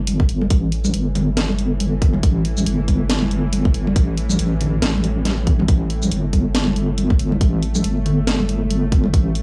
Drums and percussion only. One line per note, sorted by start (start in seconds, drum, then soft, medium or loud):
0.07 closed hi-hat medium
0.07 high conga medium
0.20 kick loud
0.29 closed hi-hat medium
0.41 high conga medium
0.50 kick loud
0.50 closed hi-hat medium
0.72 closed hi-hat soft
0.85 high conga loud
0.85 shaker medium
0.94 closed hi-hat medium
1.15 closed hi-hat medium
1.15 high conga medium
1.15 low conga loud
1.37 snare loud
1.37 closed hi-hat medium
1.49 high conga medium
1.59 closed hi-hat medium
1.80 closed hi-hat medium
1.80 high conga medium
2.02 kick loud
2.02 closed hi-hat medium
2.13 high conga medium
2.13 low conga medium
2.23 kick loud
2.23 closed hi-hat medium
2.45 closed hi-hat soft
2.57 high conga medium
2.57 shaker medium
2.66 closed hi-hat medium
2.88 kick medium
2.88 closed hi-hat medium
2.88 high conga medium
3.10 snare loud
3.10 closed hi-hat medium
3.22 high conga medium
3.31 closed hi-hat soft
3.53 closed hi-hat medium
3.53 high conga medium
3.65 kick loud
3.74 closed hi-hat medium
3.87 high conga loud
3.96 kick loud
3.96 closed hi-hat medium
4.17 closed hi-hat soft
4.29 high conga medium
4.29 shaker medium
4.39 closed hi-hat medium
4.61 closed hi-hat medium
4.61 low conga medium
4.82 snare loud
4.82 closed hi-hat medium
4.95 high conga medium
5.04 closed hi-hat soft
5.25 snare medium
5.25 closed hi-hat medium
5.25 high conga medium
5.47 kick loud
5.47 closed hi-hat medium
5.59 high conga medium
5.59 low conga medium
5.68 kick loud
5.68 closed hi-hat medium
5.90 closed hi-hat soft
6.02 high conga medium
6.02 shaker medium
6.12 closed hi-hat medium
6.33 kick medium
6.33 closed hi-hat soft
6.33 high conga medium
6.55 snare loud
6.55 closed hi-hat medium
6.67 high conga medium
6.76 closed hi-hat soft
6.98 closed hi-hat medium
6.98 high conga medium
7.10 kick loud
7.20 closed hi-hat soft
7.32 high conga medium
7.41 kick loud
7.41 closed hi-hat medium
7.63 closed hi-hat soft
7.75 high conga medium
7.75 shaker medium
7.84 closed hi-hat medium
8.06 closed hi-hat soft
8.06 low conga medium
8.27 snare loud
8.27 closed hi-hat medium
8.40 high conga medium
8.49 closed hi-hat soft
8.70 closed hi-hat medium
8.70 high conga medium
8.92 kick loud
8.92 closed hi-hat soft
9.04 high conga medium
9.04 low conga medium
9.14 kick loud
9.14 closed hi-hat medium
9.35 closed hi-hat medium